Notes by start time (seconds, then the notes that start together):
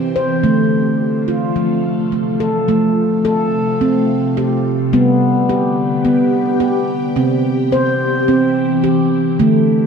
Already playing: C3 E3 C4 G4
0.16 C5
0.43 D3 A3 F4
1.28 F4
1.56 F3
2.12 A3
2.40 A4
2.68 C3 F3 A3 F4
3.25 A4
3.81 C4
4.37 G4
4.93 D3 G3 B3 G4
5.49 G4
6.05 B3
6.60 G4
7.16 C3 E3 C4
7.72 C5
8.28 C4
8.84 G4
9.39 D3 A3 F4